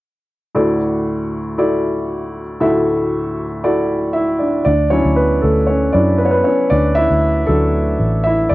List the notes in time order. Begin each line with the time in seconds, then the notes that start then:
0.55 D2 A2 E4 F#4 A4 D5
1.58 E4 F#4 A4 D5
2.60 D2 A2 E4 F#4 A4 E5
3.64 E4 F#4 A4 D5
4.13 E4 E5
4.39 D4 D5
4.65 D2 D4 D5
4.90 F#3 C#4 D4 E4 C#5
5.05 D2
5.16 B3 B4
5.42 D2 A3 A4
5.67 C#4 C#5
5.93 F#2 F#3 D4 E4 D5
6.18 B3 B4
6.25 C#5
6.31 B3 B4
6.44 C#4 C#5
6.70 D2 D4 D5
6.95 E4 E5
7.10 D2
7.47 D2 F#3 A3 D4 E4 A4
8.00 A1
8.24 E4 E5
8.49 F#1 D5